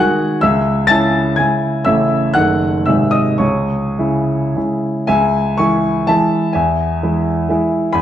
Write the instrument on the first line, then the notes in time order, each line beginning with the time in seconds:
grand piano
Already playing: F#5 F#6
0.00 D#3 G#3 F#4
0.41 C#2 E5 E6
0.87 C#3 G#3 E4 A5 A6
1.36 C#3 G#3 E4 G#5 G#6
1.85 A1 C#3 A3 E4 E5 E6
2.34 F#1 D#3 A3 D#4 F#5 F#6
2.86 G#1 C3 G#3 D#4 E5 E6
3.11 D#5 D#6
3.38 C#2 C#5 C#6
3.98 C#3 G#3 E4
4.56 C#3 G#3 E4
5.07 C#2 E5 G#5
5.57 E3 G#3 E4 G#5 C#6
6.07 E3 G#3 E4 E5 A5
6.53 E2 E5 G#5
7.03 E3 G#3 E4
7.49 E3 G#3 E4
7.93 E2 G#5 B5